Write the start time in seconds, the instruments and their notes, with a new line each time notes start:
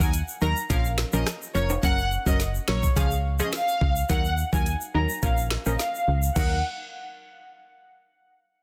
0.00 fm bass D#2, synth stab F#3 D#4 A#4, violin section G#5, kick, shaker
0.13 closed hi-hat, shaker
0.28 shaker
0.41 fm bass D#2, synth stab F#3 D#4 A#4, violin section A#5, shaker
0.57 shaker
0.70 fm bass A#1, synth stab F3 C#4 A#4, violin section F5, kick, closed hi-hat, shaker
0.85 shaker
0.98 finger snap, snare, shaker
1.13 fm bass A#1, synth stab F3 C#4 A#4, violin section D#5, shaker
1.27 cross-stick, snare, closed hi-hat, shaker
1.42 shaker
1.55 fm bass F1, synth stab F3 C#4 A#4, violin section C#5, shaker
1.70 high timbale, shaker
1.83 fm bass F#1, synth stab F#3 C#4 A#4, violin section F#5, kick, closed hi-hat, shaker
1.98 shaker
2.11 shaker
2.26 fm bass F#1, synth stab F#3 C#4 A#4, violin section D#5, kick, shaker
2.40 snare, closed hi-hat, shaker
2.55 shaker
2.68 fm bass A#1, synth stab F#3 C#4 A#4, violin section C#5, finger snap, snare
2.83 kick, shaker
2.96 fm bass C#2, synth stab F3 C#4 G#4, violin section F5, kick, closed hi-hat, shaker
3.11 shaker
3.39 synth stab F3 C#4 G#4, violin section D#5, shaker
3.53 violin section F5, finger snap, snare, closed hi-hat, shaker
3.68 shaker
3.81 fm bass C#2, kick
3.96 shaker
4.09 fm bass D#2, synth stab F#3 D#4 A#4, violin section F#5, kick, closed hi-hat, shaker
4.25 shaker
4.38 shaker
4.53 fm bass D#2, synth stab F#3 D#4 A#4, violin section G#5, kick, shaker
4.66 closed hi-hat, shaker
4.81 shaker
4.94 fm bass D#2, synth stab F#3 D#4 A#4, violin section A#5
5.09 shaker
5.23 fm bass A#1, synth stab F3 C#4 A#4, violin section F5, kick, closed hi-hat, shaker
5.37 shaker
5.50 finger snap, snare
5.66 fm bass A#1, synth stab F3 C#4 A#4, violin section D#5, shaker
5.79 violin section F5, snare, closed hi-hat, shaker
5.95 shaker
6.08 fm bass C#2
6.23 shaker
6.36 fm bass D#2, synth stab F#3 D#4 A#4, violin section F#5, kick, crash, shaker